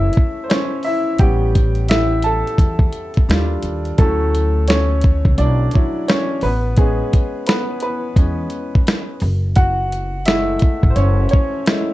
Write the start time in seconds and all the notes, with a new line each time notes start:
Already playing: A3 C#4 E4 G#4 A4 C#5 E5
0.13 closed hi-hat
0.17 kick
0.44 C5
0.49 C#4 C#5, snare, closed hi-hat
0.83 E4 E5, open hi-hat
1.18 A1 G3 B3 C#4 G4 F#5 G5, kick, closed hi-hat
1.55 kick, closed hi-hat
1.75 closed hi-hat
1.89 E4 E5, snare, closed hi-hat
2.22 A4 A5, closed hi-hat
2.47 closed hi-hat
2.58 E2, kick, closed hi-hat
2.79 kick
2.93 closed hi-hat
3.14 kick, closed hi-hat
3.29 D#2 G3 D4 F4, snare, closed hi-hat
3.63 D#2, closed hi-hat
3.85 closed hi-hat
3.98 D2 F#3 A3 C#4 E4 A4, kick, closed hi-hat
4.35 closed hi-hat
4.68 C#4 C#5, snare, closed hi-hat
5.01 kick, closed hi-hat
5.25 C#2, kick
5.38 B1 D4 D5, closed hi-hat
5.71 F#3 E4 C#5, closed hi-hat
5.75 kick
6.08 C#4 C#5, snare, closed hi-hat
6.41 A1 B3 B4, open hi-hat
6.77 G#3 B3 C#4 G#4, kick, closed hi-hat
7.13 kick, closed hi-hat
7.47 B3 B4, snare, closed hi-hat
7.80 B4, closed hi-hat
7.84 B3
8.16 E2 G#3 B3 C#4, kick, closed hi-hat
8.50 closed hi-hat
8.75 kick
8.87 snare, closed hi-hat
9.20 F#1, open hi-hat
9.56 F#4 F#5, kick, closed hi-hat
9.92 closed hi-hat
10.25 G#3 A3 E4 E5, snare, closed hi-hat
10.59 kick, closed hi-hat
10.83 G#1, kick
10.90 C5
10.96 F#1 C#4 C#5, closed hi-hat
11.29 C#4 C#5, closed hi-hat
11.33 kick
11.66 G#3 A3 E4, snare, closed hi-hat